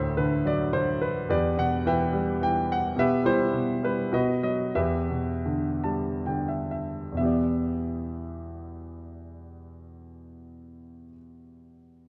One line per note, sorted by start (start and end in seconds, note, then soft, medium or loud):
0.00 1.25 D2 soft
0.00 0.98 A2 soft
0.00 0.41 A4 soft
0.00 0.18 C5 medium
0.00 1.31 E5 medium
0.17 0.72 D3 soft
0.17 0.46 B4 medium
0.45 1.26 F#3 soft
0.45 0.75 D5 medium
0.73 1.27 D3 soft
0.73 1.02 C5 medium
1.01 1.28 B4 medium
1.29 2.92 E2 medium
1.29 2.10 G4 soft
1.29 1.85 B4 soft
1.29 1.58 D5 medium
1.57 2.65 B2 soft
1.57 1.87 F#5 medium
1.85 2.40 E3 soft
1.85 2.65 B4 soft
1.85 2.65 E5 soft
1.85 2.42 G5 medium
2.13 2.93 G3 soft
2.41 2.94 E3 soft
2.41 2.70 G5 medium
2.72 2.98 F#5 medium
2.96 3.51 B2 soft
2.96 3.24 G4 medium
2.96 3.79 B4 medium
2.96 3.24 E5 medium
3.23 3.81 G3 soft
3.23 4.08 E4 soft
3.23 4.08 G4 soft
3.23 3.84 C5 medium
3.53 4.10 B2 soft
3.83 4.11 G3 soft
3.83 4.12 B4 medium
4.12 4.73 B2 soft
4.12 4.71 F#4 soft
4.12 4.72 B4 soft
4.12 4.42 D#5 medium
4.43 4.74 F#3 soft
4.43 4.76 D#5 medium
4.75 7.10 E2 soft
4.75 6.68 G4 soft
4.75 6.68 B4 soft
4.75 6.47 E5 medium
5.10 6.68 B2 soft
5.46 6.24 D3 soft
5.84 7.15 G3 soft
5.84 6.23 A5 soft
6.26 7.15 D3 soft
6.26 6.47 G5 soft
6.48 6.70 E5 soft
6.71 7.15 E5 soft
7.12 11.04 E2 soft
7.12 11.07 B2 soft
7.17 11.10 E3 soft
7.17 11.13 B3 soft
7.17 11.10 E5 soft
7.23 11.15 G4 soft
7.23 11.18 D5 soft